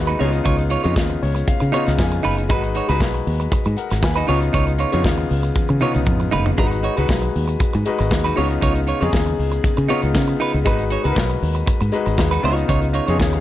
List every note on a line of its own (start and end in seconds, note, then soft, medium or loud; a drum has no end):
0.00 0.14 D#2 medium
0.00 0.22 G#3 medium
0.00 0.21 D#4 medium
0.00 0.22 F#4 medium
0.00 0.22 B4 medium
0.07 0.18 D#4 soft
0.07 0.19 F#4 medium
0.07 0.20 B4 medium
0.07 closed hi-hat soft
0.07 shaker medium
0.19 0.40 C#2 medium
0.19 0.71 C#3 medium
0.19 0.71 B3 medium
0.19 0.38 D#4 medium
0.19 0.71 D#4 medium
0.19 0.33 F4 loud
0.19 0.72 F4 medium
0.19 0.32 C#5 medium
0.19 open hi-hat medium
0.33 muted clean electric guitar stroke soft
0.33 closed hi-hat soft
0.33 shaker soft
0.44 0.76 C#2 medium
0.44 0.63 D#4 medium
0.44 0.58 F4 medium
0.44 0.58 C#5 medium
0.44 kick loud
0.44 closed hi-hat medium
0.44 shaker medium
0.58 muted clean electric guitar stroke soft
0.58 closed hi-hat soft
0.58 shaker soft
0.70 0.84 D#4 medium
0.70 0.83 F4 medium
0.70 0.82 C#5 medium
0.70 closed hi-hat medium
0.84 0.97 F2 medium
0.84 1.52 C#3 medium
0.84 1.53 B3 medium
0.84 1.53 D#4 medium
0.84 0.94 D#4 soft
0.84 0.95 F4 medium
0.84 1.53 F4 medium
0.84 0.96 C#5 medium
0.84 closed hi-hat soft
0.84 shaker medium
0.95 1.16 D#2 medium
0.95 muted clean electric guitar stroke soft
0.95 kick loud
0.95 snare loud
0.95 shaker medium
1.10 muted clean electric guitar stroke soft
1.10 closed hi-hat soft
1.10 shaker medium
1.23 1.42 C#2 medium
1.23 1.46 C#5 medium
1.23 open hi-hat medium
1.35 muted clean electric guitar stroke soft
1.35 closed hi-hat soft
1.35 shaker medium
1.48 1.95 F5 medium
1.48 muted fingered electric bass stroke soft
1.48 kick loud
1.48 closed hi-hat medium
1.48 shaker medium
1.60 1.71 C#3 medium
1.60 muted clean electric guitar stroke soft
1.60 closed hi-hat soft
1.60 shaker soft
1.72 2.32 C#3 medium
1.72 2.33 B3 medium
1.72 1.91 D#4 medium
1.72 2.33 D#4 medium
1.72 1.86 F4 medium
1.72 2.33 F4 medium
1.72 1.85 C#5 medium
1.72 closed hi-hat medium
1.72 shaker soft
1.86 1.97 C#2 medium
1.86 muted clean electric guitar stroke medium
1.86 snare soft
1.86 closed hi-hat soft
1.86 shaker medium
1.98 2.18 F2 medium
1.98 2.46 G#5 medium
1.98 kick loud
1.98 snare loud
1.98 shaker medium
2.12 muted clean electric guitar stroke soft
2.12 closed hi-hat soft
2.12 shaker medium
2.23 2.50 F#1 medium
2.23 2.42 D#4 medium
2.23 2.37 F4 medium
2.23 2.36 B4 medium
2.23 open hi-hat medium
2.37 muted clean electric guitar stroke medium
2.37 closed hi-hat soft
2.37 shaker soft
2.49 2.80 G#1 loud
2.49 2.79 G#3 medium
2.49 2.68 D#4 medium
2.49 2.79 D#4 medium
2.49 2.80 F#4 medium
2.49 2.64 F#4 medium
2.49 2.80 B4 medium
2.49 2.62 B4 medium
2.49 kick loud
2.49 closed hi-hat medium
2.49 shaker medium
2.63 muted clean electric guitar stroke soft
2.63 closed hi-hat soft
2.63 shaker soft
2.75 2.89 D#4 medium
2.75 2.89 F#4 medium
2.75 2.88 C#5 medium
2.75 closed hi-hat medium
2.88 3.01 C#2 medium
2.88 3.56 G#3 medium
2.88 3.57 D#4 medium
2.88 2.99 D#4 soft
2.88 3.57 F#4 medium
2.88 3.00 F#4 medium
2.88 3.01 B4 medium
2.88 3.57 B4 medium
2.88 closed hi-hat soft
2.88 shaker medium
3.00 3.21 B1 medium
3.00 kick loud
3.00 snare medium
3.00 shaker medium
3.13 muted clean electric guitar stroke soft
3.13 closed hi-hat soft
3.13 shaker medium
3.27 3.46 D#2 medium
3.27 open hi-hat medium
3.40 muted clean electric guitar stroke soft
3.40 closed hi-hat soft
3.40 shaker medium
3.52 muted clean electric guitar stroke soft
3.52 muted fingered electric bass stroke soft
3.52 kick loud
3.52 closed hi-hat medium
3.52 shaker medium
3.64 3.75 G#2 medium
3.64 muted clean electric guitar stroke soft
3.64 closed hi-hat soft
3.64 shaker soft
3.76 4.02 A#4 medium
3.76 4.01 F#5 medium
3.76 closed hi-hat medium
3.76 shaker soft
3.90 4.01 G#1 medium
3.90 muted clean electric guitar stroke soft
3.90 snare soft
3.90 closed hi-hat soft
3.90 shaker medium
4.02 4.23 D#2 medium
4.02 4.16 B4 medium
4.02 4.16 G#5 medium
4.02 muted clean electric guitar stroke soft
4.02 kick loud
4.02 snare loud
4.02 shaker medium
4.16 4.26 D#4 soft
4.16 4.27 F#4 medium
4.16 4.41 F#4 medium
4.16 4.28 B4 medium
4.16 4.41 D#5 medium
4.16 closed hi-hat soft
4.16 shaker medium
4.27 4.48 C#2 medium
4.27 4.79 C#3 medium
4.27 4.79 B3 medium
4.27 4.46 D#4 medium
4.27 4.80 D#4 medium
4.27 4.41 F4 medium
4.27 4.80 F4 medium
4.27 4.41 C#5 loud
4.27 open hi-hat medium
4.41 muted clean electric guitar stroke soft
4.41 closed hi-hat soft
4.41 shaker soft
4.53 4.84 C#2 loud
4.53 4.71 D#4 medium
4.53 4.67 F4 medium
4.53 4.67 C#5 medium
4.53 kick loud
4.53 closed hi-hat medium
4.53 shaker medium
4.67 muted clean electric guitar stroke soft
4.67 closed hi-hat soft
4.67 shaker soft
4.78 4.93 D#4 medium
4.78 4.92 F4 medium
4.78 4.91 C#5 medium
4.78 closed hi-hat medium
4.78 shaker soft
4.92 5.05 F2 medium
4.92 5.61 C#3 medium
4.92 5.61 B3 medium
4.92 5.61 D#4 medium
4.92 5.03 D#4 soft
4.92 5.03 F4 medium
4.92 5.62 F4 medium
4.92 5.05 C#5 medium
4.92 closed hi-hat medium
4.92 shaker medium
5.03 5.25 D#2 medium
5.03 muted clean electric guitar stroke soft
5.03 kick loud
5.03 snare loud
5.03 shaker medium
5.17 muted clean electric guitar stroke soft
5.17 closed hi-hat soft
5.17 shaker medium
5.30 5.50 C#2 medium
5.30 open hi-hat medium
5.30 shaker soft
5.43 muted clean electric guitar stroke soft
5.43 closed hi-hat soft
5.43 shaker medium
5.56 muted fingered electric bass stroke soft
5.56 kick loud
5.56 high tom medium
5.56 shaker medium
5.68 5.79 C#3 medium
5.68 muted clean electric guitar stroke soft
5.68 shaker soft
5.80 6.40 C#3 medium
5.80 6.41 B3 medium
5.80 5.99 D#4 medium
5.80 6.41 D#4 medium
5.80 5.94 F4 medium
5.80 6.41 F4 medium
5.80 5.94 C#5 medium
5.80 mid tom medium
5.80 shaker soft
5.94 6.05 C#2 medium
5.94 muted clean electric guitar stroke soft
5.94 mid tom medium
5.94 shaker soft
6.06 6.27 F2 medium
6.06 kick loud
6.06 mid tom medium
6.06 shaker medium
6.19 muted clean electric guitar stroke soft
6.19 shaker medium
6.31 6.53 F#1 medium
6.31 6.50 D#4 medium
6.31 6.45 F4 medium
6.31 6.45 B4 medium
6.31 floor tom medium
6.46 muted clean electric guitar stroke soft
6.46 floor tom medium
6.46 shaker soft
6.58 6.88 G#1 medium
6.58 6.87 G#3 medium
6.58 6.78 D#4 medium
6.58 6.87 D#4 medium
6.58 6.71 F#4 medium
6.58 6.88 F#4 medium
6.58 6.88 B4 medium
6.58 6.70 B4 medium
6.58 kick loud
6.58 closed hi-hat medium
6.58 shaker medium
6.71 muted clean electric guitar stroke soft
6.71 closed hi-hat soft
6.71 shaker soft
6.83 6.97 D#4 medium
6.83 6.96 F#4 medium
6.83 6.96 C#5 medium
6.83 closed hi-hat medium
6.96 7.07 C#2 medium
6.96 7.65 G#3 medium
6.96 7.65 D#4 medium
6.96 7.07 D#4 soft
6.96 7.65 F#4 medium
6.96 7.08 F#4 medium
6.96 7.09 B4 medium
6.96 7.65 B4 medium
6.96 closed hi-hat soft
6.96 shaker medium
7.08 7.29 B1 medium
7.08 muted clean electric guitar stroke soft
7.08 kick loud
7.08 snare loud
7.08 shaker medium
7.22 muted clean electric guitar stroke soft
7.22 closed hi-hat soft
7.22 shaker medium
7.36 7.55 D#2 medium
7.36 open hi-hat medium
7.48 muted clean electric guitar stroke soft
7.48 closed hi-hat soft
7.48 shaker medium
7.60 muted clean electric guitar stroke soft
7.60 muted fingered electric bass stroke soft
7.60 kick loud
7.60 closed hi-hat medium
7.60 shaker medium
7.73 7.84 G#2 medium
7.73 muted clean electric guitar stroke soft
7.73 closed hi-hat soft
7.73 shaker soft
7.85 8.37 G#3 medium
7.85 8.36 D#4 medium
7.85 8.37 F#4 medium
7.85 8.37 B4 medium
7.85 closed hi-hat medium
7.85 shaker medium
7.98 8.09 G#1 medium
7.98 muted clean electric guitar stroke medium
7.98 closed hi-hat soft
7.98 shaker medium
8.11 8.31 D#2 medium
8.11 muted clean electric guitar stroke soft
8.11 kick loud
8.11 snare loud
8.11 shaker medium
8.24 8.35 D#4 soft
8.24 8.36 F#4 soft
8.24 8.37 B4 medium
8.24 closed hi-hat soft
8.24 shaker medium
8.36 8.57 C#2 medium
8.36 8.87 C#3 medium
8.36 8.88 B3 medium
8.36 8.54 D#4 loud
8.36 8.88 D#4 medium
8.36 8.50 F4 medium
8.36 8.88 F4 medium
8.36 8.49 C#5 medium
8.36 open hi-hat medium
8.50 muted clean electric guitar stroke soft
8.50 closed hi-hat soft
8.50 shaker soft
8.61 8.92 C#2 medium
8.61 8.80 D#4 medium
8.61 8.75 F4 medium
8.61 8.74 C#5 medium
8.61 kick loud
8.61 closed hi-hat medium
8.61 shaker medium
8.75 muted clean electric guitar stroke soft
8.75 closed hi-hat soft
8.75 shaker soft
8.87 9.02 D#4 soft
8.87 9.00 F4 medium
8.87 9.00 C#5 medium
8.87 closed hi-hat medium
9.01 9.11 F2 medium
9.01 9.69 C#3 medium
9.01 9.69 B3 medium
9.01 9.69 D#4 medium
9.01 9.11 D#4 soft
9.01 9.12 F4 medium
9.01 9.70 G#4 medium
9.01 9.13 C#5 medium
9.01 closed hi-hat soft
9.01 shaker medium
9.13 9.33 D#2 medium
9.13 muted clean electric guitar stroke soft
9.13 kick loud
9.13 snare medium
9.13 shaker medium
9.26 muted clean electric guitar stroke soft
9.26 closed hi-hat soft
9.26 shaker medium
9.39 9.58 C#2 medium
9.39 open hi-hat medium
9.52 muted clean electric guitar stroke soft
9.52 closed hi-hat soft
9.52 shaker medium
9.64 muted fingered electric bass stroke soft
9.64 kick loud
9.64 closed hi-hat medium
9.64 shaker medium
9.77 9.87 C#3 medium
9.77 muted clean electric guitar stroke medium
9.77 closed hi-hat soft
9.77 shaker medium
9.89 10.48 C#3 medium
9.89 10.49 B3 medium
9.89 10.07 D#4 medium
9.89 10.49 D#4 medium
9.89 10.02 F4 medium
9.89 10.49 F4 medium
9.89 10.02 C#5 medium
9.89 closed hi-hat medium
9.89 shaker soft
10.02 10.12 C#2 medium
10.02 muted clean electric guitar stroke soft
10.02 closed hi-hat soft
10.02 shaker medium
10.15 10.34 C#3 loud
10.15 kick loud
10.15 snare loud
10.15 shaker medium
10.28 muted clean electric guitar stroke soft
10.28 closed hi-hat soft
10.28 shaker soft
10.40 10.58 D#4 medium
10.40 10.53 F4 medium
10.40 10.52 B4 medium
10.40 open hi-hat medium
10.54 10.63 C#2 medium
10.54 muted clean electric guitar stroke soft
10.54 closed hi-hat soft
10.54 shaker soft
10.65 10.96 G#1 medium
10.65 10.95 G#3 medium
10.65 10.83 D#4 medium
10.65 10.95 D#4 medium
10.65 10.95 F#4 medium
10.65 10.79 F#4 medium
10.65 10.96 B4 medium
10.65 10.78 B4 medium
10.65 kick loud
10.65 closed hi-hat medium
10.65 shaker medium
10.78 muted clean electric guitar stroke soft
10.78 closed hi-hat soft
10.78 shaker soft
10.90 11.04 D#4 medium
10.90 11.04 F#4 medium
10.90 11.04 C#5 medium
10.90 closed hi-hat medium
11.04 11.14 C#2 medium
11.04 11.72 G#3 medium
11.04 11.73 D#4 medium
11.04 11.15 D#4 soft
11.04 11.16 F#4 medium
11.04 11.73 F#4 medium
11.04 11.11 A#4 medium
11.04 11.16 B4 medium
11.04 closed hi-hat soft
11.04 shaker medium
11.12 11.76 B4 medium
11.16 11.36 B1 medium
11.16 muted clean electric guitar stroke soft
11.16 kick loud
11.16 snare loud
11.16 shaker medium
11.29 muted clean electric guitar stroke soft
11.29 closed hi-hat soft
11.29 shaker medium
11.42 11.62 D#2 medium
11.42 open hi-hat medium
11.55 muted clean electric guitar stroke soft
11.55 closed hi-hat soft
11.55 shaker medium
11.66 muted clean electric guitar stroke soft
11.66 kick loud
11.66 closed hi-hat medium
11.66 shaker medium
11.80 11.90 G#2 medium
11.80 muted clean electric guitar stroke soft
11.80 closed hi-hat soft
11.80 shaker soft
11.92 12.43 G#3 medium
11.92 12.42 D#4 medium
11.92 12.44 F#4 medium
11.92 12.44 B4 medium
11.92 closed hi-hat medium
11.92 shaker medium
12.06 12.16 G#1 medium
12.06 muted clean electric guitar stroke soft
12.06 closed hi-hat soft
12.06 shaker medium
12.17 12.38 D#2 medium
12.17 muted clean electric guitar stroke soft
12.17 kick loud
12.17 snare loud
12.17 shaker medium
12.31 12.42 D#4 medium
12.31 12.44 F#4 medium
12.31 12.45 B4 medium
12.31 closed hi-hat soft
12.31 shaker medium
12.43 12.63 C#2 medium
12.43 12.94 C#3 medium
12.43 12.95 B3 medium
12.43 12.64 D#4 medium
12.43 12.95 D#4 medium
12.43 12.51 E4 medium
12.43 12.57 F4 medium
12.43 12.56 C#5 loud
12.43 open hi-hat medium
12.51 12.98 F4 medium
12.56 muted clean electric guitar stroke soft
12.56 closed hi-hat soft
12.56 shaker soft
12.68 12.99 C#2 medium
12.68 12.87 D#4 medium
12.68 12.82 F4 medium
12.68 12.81 C#5 medium
12.68 kick loud
12.68 closed hi-hat medium
12.68 shaker medium
12.82 muted clean electric guitar stroke soft
12.82 closed hi-hat soft
12.82 shaker soft
12.93 13.07 D#4 medium
12.93 13.06 F4 medium
12.93 13.05 C#5 medium
12.93 closed hi-hat medium
13.07 13.17 F2 medium
13.07 13.40 C#3 medium
13.07 13.40 B3 medium
13.07 13.17 D#4 soft
13.07 13.21 D#4 medium
13.07 13.18 F4 medium
13.07 13.21 G#4 medium
13.07 13.19 C#5 medium
13.07 closed hi-hat soft
13.07 shaker medium
13.18 13.40 D#2 medium
13.18 13.33 F4 soft
13.18 13.33 C#5 medium
13.18 muted clean electric guitar stroke soft
13.18 kick loud
13.18 snare loud
13.18 shaker medium
13.32 13.40 G#4 soft
13.32 13.40 F5 medium
13.32 muted clean electric guitar stroke soft
13.32 closed hi-hat soft
13.32 shaker medium